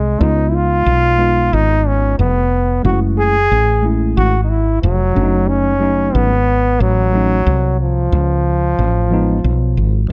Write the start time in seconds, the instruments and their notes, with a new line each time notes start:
Already playing: fretless electric bass C2, trombone G#3
0.19 fretless electric bass C#2, tine electric piano G#3 B3 D#4 F4, trombone D#4
0.49 trombone E4
0.55 trombone F4
0.86 fretless electric bass B1
1.18 tine electric piano G#3 B3 D#4 F4
1.53 fretless electric bass G#1, trombone D#4
1.87 trombone C#4
2.19 fretless electric bass F1, trombone B3
2.83 fretless electric bass F#1, tine electric piano G#3 A3 C#4 E4, trombone F#4
3.19 trombone G#4
3.51 fretless electric bass A1
3.82 tine electric piano G#3 A3 C#4 E4
4.17 fretless electric bass G#1, trombone F#4
4.44 trombone D#4
4.50 trombone E4
4.82 fretless electric bass F1, trombone F#3
5.14 fretless electric bass F#1, tine electric piano F#3 A3 C#4 D4
5.23 tine electric piano D#4
5.49 trombone C#4
5.80 tine electric piano F#3 A3 C#4 D#4
6.15 fretless electric bass G#1, trombone B3
6.80 fretless electric bass A1, trombone F#3
7.12 tine electric piano F#3 A3 C#4 D#4
7.47 fretless electric bass C2
7.80 trombone F3
8.12 fretless electric bass C#2
8.79 fretless electric bass A1
9.10 tine electric piano F3 G#3 B3 D#4
9.44 fretless electric bass B1
9.77 fretless electric bass G#1
10.09 tine electric piano F3